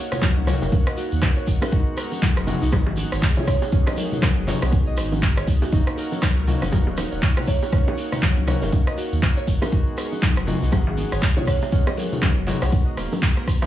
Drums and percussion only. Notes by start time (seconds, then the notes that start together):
0.12 cross-stick, closed hi-hat, low conga, shekere
0.22 kick, clap, closed hi-hat, high conga, shekere
0.37 low bongo
0.47 cross-stick, open hi-hat, high conga, low conga, shekere
0.62 closed hi-hat, high bongo, shekere
0.72 kick, closed hi-hat, low bongo, shekere
0.87 cross-stick
0.97 open hi-hat, shekere
1.12 closed hi-hat, shekere
1.22 kick, cross-stick, clap, closed hi-hat, low bongo, shekere
1.47 kick, open hi-hat, shekere
1.62 cross-stick, closed hi-hat, high bongo, low bongo, shekere
1.72 kick, closed hi-hat, shekere
1.87 closed hi-hat
1.97 cross-stick, open hi-hat, shekere
2.12 closed hi-hat, low bongo, shekere
2.22 kick, clap, closed hi-hat, high conga
2.37 cross-stick
2.47 open hi-hat, low bongo, high conga, low conga, shekere
2.62 closed hi-hat, shekere
2.72 kick, cross-stick, closed hi-hat, high bongo, high conga, shekere
2.86 high bongo
2.97 open hi-hat, low bongo, shekere
3.12 cross-stick, closed hi-hat, shekere
3.22 kick, clap, closed hi-hat, shekere
3.37 high bongo, low bongo, low conga
3.47 kick, cross-stick, open hi-hat, shekere
3.62 closed hi-hat, high bongo, shekere
3.72 kick, closed hi-hat, shekere
3.86 cross-stick, closed hi-hat, high bongo, low bongo
3.97 open hi-hat, high conga, shekere
4.12 closed hi-hat, low conga, shekere
4.22 kick, cross-stick, clap, closed hi-hat, low bongo, high conga
4.47 clap, open hi-hat, high conga, low conga, shekere
4.62 cross-stick, closed hi-hat, high bongo, shekere
4.72 kick, closed hi-hat, low bongo, shekere
4.97 cross-stick, open hi-hat, shekere
5.12 closed hi-hat, low bongo, shekere
5.22 kick, clap, closed hi-hat, shekere
5.37 cross-stick
5.47 kick, open hi-hat, shekere
5.62 closed hi-hat, high bongo, low bongo, shekere
5.72 kick, closed hi-hat, low bongo, shekere
5.87 cross-stick, closed hi-hat
5.98 open hi-hat, shekere
6.12 closed hi-hat, low bongo, shekere
6.22 kick, cross-stick, clap, closed hi-hat, high conga
6.47 open hi-hat, high conga, low conga, shekere
6.62 cross-stick, closed hi-hat, low bongo, shekere
6.72 kick, closed hi-hat, high bongo, high conga, shekere
6.87 high bongo
6.97 cross-stick, open hi-hat, low bongo, shekere
7.12 closed hi-hat, shekere
7.22 kick, clap, closed hi-hat, shekere
7.37 cross-stick, high bongo, low conga
7.47 kick, open hi-hat, low bongo, shekere
7.62 closed hi-hat, high bongo, shekere
7.72 kick, cross-stick, closed hi-hat, shekere
7.87 closed hi-hat, high bongo, low bongo
7.98 open hi-hat, shekere
8.12 cross-stick, closed hi-hat, low conga, shekere
8.22 kick, clap, closed hi-hat, high conga, shekere
8.37 low bongo
8.47 cross-stick, open hi-hat, high conga, low conga, shekere
8.62 closed hi-hat, high bongo, shekere
8.72 kick, closed hi-hat, low bongo, shekere
8.87 cross-stick
8.98 open hi-hat, shekere
9.12 closed hi-hat, shekere
9.22 kick, cross-stick, clap, closed hi-hat, low bongo, shekere
9.47 kick, open hi-hat, shekere
9.62 cross-stick, closed hi-hat, high bongo, low bongo, shekere
9.72 kick, closed hi-hat, shekere
9.87 closed hi-hat
9.97 cross-stick, open hi-hat, shekere
10.12 closed hi-hat, low bongo, shekere
10.22 kick, clap, closed hi-hat, high conga, shekere
10.37 cross-stick
10.47 open hi-hat, low bongo, high conga, low conga, shekere
10.62 closed hi-hat, shekere
10.72 kick, cross-stick, closed hi-hat, high bongo, high conga, shekere
10.87 high bongo
10.97 open hi-hat, low bongo, shekere
11.12 cross-stick, closed hi-hat, shekere
11.22 kick, clap, closed hi-hat, shekere
11.36 high bongo, low bongo, low conga
11.47 kick, cross-stick, open hi-hat, shekere
11.62 closed hi-hat, high bongo, shekere
11.72 kick, closed hi-hat, shekere
11.87 cross-stick, closed hi-hat, high bongo, low bongo
11.97 open hi-hat, high conga, shekere
12.12 closed hi-hat, low conga, shekere
12.22 kick, cross-stick, clap, closed hi-hat, low bongo, high conga, shekere
12.47 clap, open hi-hat, high conga, low conga, shekere
12.62 cross-stick, closed hi-hat, high bongo, shekere
12.72 kick, closed hi-hat, low bongo, shekere
12.87 closed hi-hat
12.97 cross-stick, open hi-hat, shekere
13.12 closed hi-hat, low bongo, high conga, shekere
13.22 kick, clap, closed hi-hat, shekere
13.37 cross-stick
13.47 kick, cross-stick, open hi-hat, shekere
13.62 cross-stick, closed hi-hat, high bongo, low bongo, shekere